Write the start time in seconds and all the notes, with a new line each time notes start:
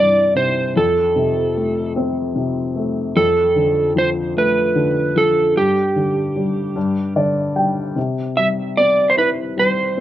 Already playing: C2 G2 C3 E3 D5
0.35 C3 C5
0.76 F2 A4
1.16 C3
1.56 A3
1.96 C4
2.36 C3
2.76 A3
3.16 F2 A4
3.56 D3
3.95 F3 C5
4.36 A3 B4
4.75 D3
5.15 F3 A4
5.56 G2 G4
5.96 D3
6.36 G3
6.76 G2
7.16 D3 D5
7.56 G3 G5
7.96 C3
8.36 G3 E5
8.77 C4 D5
9.10 C5
9.17 E4 B4
9.57 G3 C5